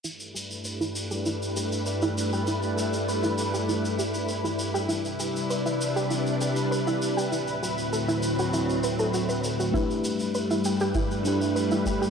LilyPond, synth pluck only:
\new Staff \with { instrumentName = "Synth pluck" } { \time 4/4 \key g \major \tempo 4 = 99 e'16 r16 g'16 r16 b'16 e'16 r16 g'16 e'16 r16 g'16 r16 b'16 e'16 r16 g'16 | e'16 r16 g'16 r16 b'16 e'16 r16 g'16 e'16 r16 g'16 r16 b'16 e'16 r16 g'16 | e'16 r16 g'16 r16 b'16 e'16 r16 g'16 e'16 r16 g'16 r16 b'16 e'16 r16 g'16 | e'16 r16 fis'16 r16 a'16 e'16 r16 fis'16 e'16 r16 b'16 a'16 fis'16 b'16 r16 fis'16 |
e'16 r8. b'16 e'16 g'16 g'16 e'16 r8. b'16 e'16 g'16 g'16 | }